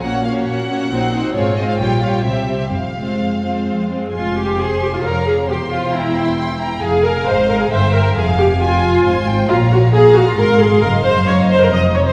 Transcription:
0.03 double bass section A#1, cello section A#2, viola section A#3 C#4, violin section F#4 C#5 F#5
0.24 viola section A#3 C#4, violin section F#4 C#5 F5
0.46 cello section A#2, violin section F#5
0.69 viola section A#3 C#4, violin section F#4 C#5
0.91 double bass section A#1, cello section A#2, viola section C4 D#4, violin section F#4 C5
1.13 viola section C4 D#4, violin section F#4 C5
1.35 double bass section G#1, cello section G#2, viola section C4 F4, violin section G#4 C5 C#5
1.57 viola section C4 F4, violin section G#4 C5 D#5
1.68 violin section F5
1.78 double bass section A#1, cello section A#2, viola section G3 F4, violin section G4 C#5 G5
2.02 viola section G3 F4, violin section G4 C#5 F5
2.12 violin section G5
2.24 double bass section C2, cello section C3, viola section G3 C4, violin section G4 C5 E5
2.48 viola section G3 C4, violin section G4 C5
2.59 violin section E5
2.72 double bass section F1, cello section F2, violin section F5
2.96 viola section G#3 C4, violin section F4 C5
3.20 cello section F2
3.43 viola section G#3 C4, violin section F4 C5
3.67 cello section F2
3.89 viola section G#3 C4, violin section F4 C5
4.12 double bass section F1, cello section F2, viola section F4, violin section G#5 C6
4.37 viola section G4
4.58 viola section G#4, violin section C5 C6
4.82 viola section G4
4.93 viola section F4
5.04 double bass section F1, cello section F2, viola section A#4, violin section C#5 F5 A#5
5.26 viola section G#4
5.49 double bass section E1, cello section E2, viola section G4, violin section C5 G5 C6
5.71 viola section F4
5.93 viola section E4, violin section G5 A#5
6.15 violin section C6
6.37 violin section G5 C6
6.60 violin section A#5
6.81 double bass section F1, cello section F2, viola section G#4, violin section F5 G#5
7.04 viola section A#4
7.26 double bass section G#1, cello section G#2, viola section C5, violin section D#5 F5
7.49 viola section A#4
7.61 viola section G#4
7.71 double bass section G1, cello section G2, viola section C5, violin section E5 G5
7.94 viola section A#4
8.16 double bass section F1, cello section F2, viola section G#4, violin section F5 G#5
8.38 viola section G4
8.60 viola section F4, violin section G5 G#5
8.82 violin section G#5
9.04 double bass section G#1, cello section G#2, violin section C5 G#5 C6
9.28 violin section G5
9.49 double bass section A#1, cello section A#2, viola section F4, violin section C#5 F5 A#5
9.71 viola section F#4
9.93 viola section G#4, violin section F5 A#5
10.15 viola section F#4
10.27 viola section F4
10.37 double bass section G#1, cello section G#2, viola section A#4, violin section F5 C6
10.60 viola section G#4
10.70 viola section G#4
10.81 double bass section F#1, cello section F#2, viola section A#4, violin section D#5 C6
11.04 viola section C5
11.27 viola section C#5, violin section A#5
11.49 viola section C5
11.60 viola section A#4
11.72 double bass section F1, cello section F2, violin section C5, viola section D#5
11.95 viola section C#5
12.06 viola section C5

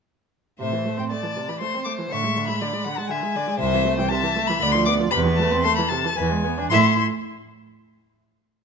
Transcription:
0.59 cello A2, viola C3, violin C5 E5
0.72 viola E3
0.85 viola A3
0.98 viola C4, violin G5
1.10 viola A3, violin D5 A5
1.24 viola E3
1.36 viola C3
1.48 viola E3, violin B5
1.60 viola A3, violin C5 C6
1.74 viola C4
1.84 viola A3, violin D6
1.99 viola E3
2.10 cello A2, viola D3, violin E5 C#6
2.24 viola G#3
2.36 viola D3
2.47 viola G#3, violin B5
2.61 viola D3, violin D5
2.73 viola G#3
2.84 viola D3, violin F#5
2.97 viola G#3, violin A5
3.09 viola D3, violin E5 G#5
3.23 viola G#3
3.36 viola D3, violin D5
3.47 viola G#3
3.59 cello C2, viola C3, violin C5 E5
3.73 viola E3
3.85 viola A3
3.98 viola E3, violin G5
4.09 viola C3, violin E5 A5
4.23 viola E3
4.36 viola A3
4.47 viola E3, violin B5
4.59 cello D2, viola D3, violin D5 B5
4.71 viola F3, violin C6
4.85 viola B3, violin D6
5.00 viola F3
5.11 cello E2, viola C3, violin B4 B5
5.25 viola E3
5.36 viola A3, violin A5
5.52 viola C4
5.63 viola A3, violin A4 C6
5.76 viola E3, violin B5
5.89 viola C3, violin A5
6.05 viola E3
6.16 cello E2, viola E3, violin B4 G#5
6.31 viola G#3
6.45 viola B3
6.58 viola D4
6.69 cello A2, viola E4, violin E5 C6

